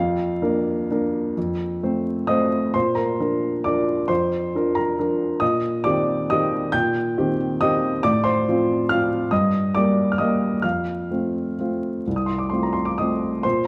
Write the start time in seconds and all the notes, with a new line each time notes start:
Already playing: F2 F5
0.42 A#3 D4 A#4
0.91 A#3 D4 A#4
1.37 F2
1.83 A3 C4 C5
2.27 A3 C4 C5 D#5 D#6
2.74 A#2 C5 C6
2.95 A#4 A#5
3.20 F3 D4 A#4
3.64 F3 D4 A#4 D5 D6
4.08 F2 C5 C6
4.55 F3 D4 A#4
4.75 A#4 A#5
4.99 F3 D4 A#4
5.40 A#2 D#5 D#6
5.84 D#3 C4 G4 D5 D6
6.30 D#3 C4 G4 D#5 D#6
6.72 A#2 G5 G6
7.18 D#3 C4 G4
7.61 D#3 C4 G4 D#5 D#6
8.03 A2 D5 D6
8.24 C5 C6
8.48 F3 C4 F4
8.89 F3 C4 F4 F5 F6
9.31 G2 D#5 D#6
9.75 G3 A#3 A#4 D5 D6
10.12 F6
10.18 G3 A#3 A#4 D#5 D#6
10.62 F2 F5 F6
11.11 A3 C4 F4
11.59 A3 C4 F4
12.07 C2
12.16 D#6
12.26 C6
12.38 D6
12.50 A3 C4 F4 C6
12.63 A#5
12.73 C6
12.85 D6
12.98 A3 C4 F4 D#5 D#6
13.43 A#2 C5 C6